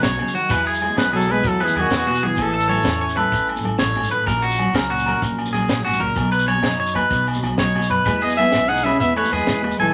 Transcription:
Already playing: F#3 D#4
0.02 B1 B2 C#5, snare, closed hi-hat, shekere
0.10 low conga
0.17 C#3, closed hi-hat, high conga, low agogo
0.25 low conga, shekere
0.34 D#3 F#4, closed hi-hat, low conga, shekere
0.49 E2 E3 B4, kick, crash, high conga, low conga, low agogo, shekere
0.66 G#4, closed hi-hat
0.74 shekere
0.81 G#3, closed hi-hat, low conga, low agogo
0.90 high conga
0.97 B1 B3 B4, snare, closed hi-hat, low conga, low agogo, shekere
1.12 B2 F#3 G#4 A4, closed hi-hat
1.21 shekere
1.28 G#3 B4, closed hi-hat, high conga, low conga, low agogo
1.43 E2 E3 F#3, kick, closed hi-hat, shekere
1.48 A4
1.60 B4, closed hi-hat, low conga, low agogo
1.64 E3 G#4, high conga, shekere
1.75 E2 G#4, muted clean electric guitar stroke, closed hi-hat, low conga, low agogo
1.79 D#3 F#4
1.90 E2 B3, snare, closed hi-hat, shekere
1.96 B2 F#4, low conga
2.07 B2 F#4, closed hi-hat, high conga, low agogo
2.14 shekere
2.22 B1 E3 F#4 G#4, closed hi-hat, low conga
2.27 G#4
2.36 A1 A2, kick, closed hi-hat, high conga, low conga, low agogo, shekere
2.41 E3 A4
2.54 A4, closed hi-hat
2.60 shekere
2.68 A3 C#5, closed hi-hat, low conga, low agogo
2.77 high conga
2.83 E2 C#4, snare, closed hi-hat, low conga, low agogo, shekere
3.01 E3 C#5, closed hi-hat
3.09 shekere
3.16 A4 B4, closed hi-hat, high conga, low conga, low agogo
3.32 A1 A2, kick, closed hi-hat, shekere
3.47 closed hi-hat, low conga, low agogo
3.56 high conga, shekere
3.63 A1 A3, closed hi-hat, low conga, low agogo
3.79 A1 C#5, snare, closed hi-hat, shekere
3.88 low conga
3.95 G#2, closed hi-hat, high conga, low agogo
4.03 shekere
4.11 A1 A2 B4, closed hi-hat, low conga
4.26 A#1 A#4, muted clean electric guitar stroke, kick, closed hi-hat, high conga, low conga, low agogo, shekere
4.42 F#4, closed hi-hat
4.51 shekere
4.59 F#3, closed hi-hat, low conga, low agogo
4.69 high conga
4.73 C#2 C#4 A#4, snare, closed hi-hat, low agogo, shekere
4.90 A#2 F#4, closed hi-hat
4.98 shekere
5.06 A#4, closed hi-hat, high conga, low conga, low agogo
5.22 A#1 A#2, kick, closed hi-hat, shekere
5.39 closed hi-hat, low agogo
5.46 high conga, shekere
5.53 A#1 F#3 G#4, snare, closed hi-hat, low conga, low agogo
5.68 A#1, snare, closed hi-hat, shekere
5.78 low conga
5.84 G#2 F#4, closed hi-hat, high conga, low agogo
5.93 shekere
6.00 C#2 A#2 A#4, closed hi-hat, low conga
6.16 B1 B2, kick, closed hi-hat, high conga, low conga, low agogo, shekere
6.24 low conga
6.31 B4, closed hi-hat, shekere
6.39 shekere
6.46 F#3 C#5, closed hi-hat, low conga, low agogo
6.55 high conga
6.62 F#2 D#4, snare, closed hi-hat, low agogo, shekere
6.71 shekere
6.78 C#5, muted clean electric guitar stroke, closed hi-hat, shekere
6.87 shekere
6.95 B4, kick, closed hi-hat, high conga, low conga, low agogo
7.03 low conga
7.10 B1 B2, kick, closed hi-hat, shekere
7.27 closed hi-hat, low agogo, shekere
7.34 high conga, low conga, shekere
7.41 B1 F#3, snare, closed hi-hat, low conga, low agogo
7.58 B1 D#4 C#5, snare, closed hi-hat, shekere
7.67 low conga
7.74 B2, closed hi-hat, high conga, low agogo
7.82 low conga, shekere
7.89 F#2 B4, closed hi-hat
8.05 E2 E3 G#3 B4, kick, closed hi-hat, high conga, low conga, low agogo, shekere
8.21 B3 G#4 D#5, closed hi-hat
8.29 shekere
8.37 G#3 B3 E5, closed hi-hat, low conga, low agogo
8.46 high conga
8.52 B1 B3, snare, closed hi-hat, low agogo, shekere
8.68 B2 D#4 G#4 F#5, closed hi-hat
8.77 shekere
8.84 C#4 B4 E5, closed hi-hat, high conga, low conga, low agogo
8.99 E2 E3 B3 E5, kick, closed hi-hat, shekere
9.16 A3 B4 C#5, closed hi-hat, low conga, low agogo
9.24 high conga, shekere
9.31 E2 G#3 G#4 B4, closed hi-hat, low conga, low agogo
9.47 E2 E3, snare, closed hi-hat, shekere
9.57 low conga
9.62 muted clean electric guitar stroke, closed hi-hat, high conga, low agogo
9.71 shekere
9.77 A#1 G#3 A4 G#5, closed hi-hat, low conga
9.81 E3

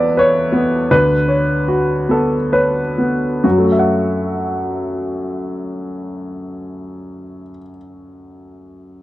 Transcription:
Already playing: E2 B3 A4 B4 D5 E5
0.17 B4 C#5
0.52 B3
0.91 D2 B4
1.28 C#5
1.68 F#4
2.09 B3 A4
2.52 B4 C#5
2.98 B3
3.44 F#2 F#4
3.51 F#3
3.58 A3
3.65 F#4
3.72 E5
3.79 F#5

